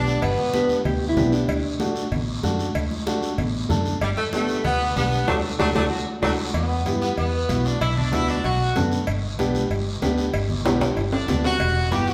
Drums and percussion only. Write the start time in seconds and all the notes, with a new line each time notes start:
0.07 short guiro
0.22 cowbell, high conga, low conga, long guiro
0.38 high conga
0.54 high conga, short guiro
0.69 high conga, short guiro
0.85 cowbell, high conga, low conga, long guiro
1.17 high conga, low conga, low timbale, short guiro
1.32 short guiro
1.48 cowbell, high conga, long guiro
1.80 high conga, short guiro
1.96 short guiro
2.12 cowbell, high conga, low conga, long guiro
2.43 high conga, short guiro
2.59 short guiro
2.75 cowbell, high conga, long guiro
2.91 high conga
3.07 high conga, short guiro
3.23 short guiro
3.38 cowbell, high conga, low conga, long guiro
3.70 high conga, low conga, short guiro
3.85 short guiro
4.01 cowbell, high conga, long guiro
4.17 high conga
4.33 high conga, short guiro
4.49 high conga, short guiro
4.64 cowbell, high conga, low conga, long guiro
4.96 high conga, short guiro
5.12 short guiro
5.28 high conga, high timbale, long guiro
5.59 high conga, high timbale, long guiro
5.75 high conga, high timbale, long guiro
6.23 high conga, high timbale, long guiro
6.54 cowbell, long guiro
6.86 cowbell, high conga, short guiro
7.02 high conga, short guiro
7.17 cowbell, long guiro
7.49 cowbell, high conga, short guiro
7.65 short guiro
7.81 cowbell, long guiro
7.97 low conga
8.12 cowbell, high conga, short guiro
8.28 high conga, short guiro
8.44 cowbell, long guiro
8.76 cowbell, high conga, low conga, low timbale, short guiro
8.92 short guiro
9.07 cowbell, long guiro
9.39 cowbell, high conga, short guiro
9.55 high conga, short guiro
9.71 cowbell, long guiro
10.02 cowbell, high conga, low timbale, short guiro
10.18 short guiro
10.33 cowbell, long guiro
10.49 low conga
10.65 cowbell, high conga, high timbale, short guiro
10.81 high conga, high timbale, short guiro
10.96 cowbell, long guiro
11.12 low timbale
11.28 cowbell, high conga, low conga, low timbale, short guiro
11.44 low timbale, short guiro
11.60 cowbell, long guiro
11.92 cowbell, high conga, short guiro
12.08 high conga, short guiro